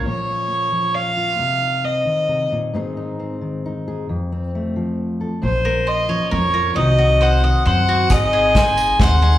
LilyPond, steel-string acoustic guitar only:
\new Staff \with { instrumentName = "Steel-string acoustic guitar" } { \time 3/4 \key bes \minor \tempo 4 = 134 << { <f bes des' f'>8 des'8 bes4 des'8 f'8 | r8 ees'8 c'2 | <ees c' ees' aes'>8 ees'8 c'4 ees'8 aes'8 | r8 c'8 a4. a'8 |
des'8 bes4 des'8 bes8 f'8 | <ees c' ees' ges'>8 c'4 ees'8 c'8 ges'8 | r2. | } \\ { bes,4. f4. | c4. ees8 c8 bes,8 | aes,4. ees4. | f,4. f4. |
bes,4. f4. | c4. ees4.~ | ees2. | } >> }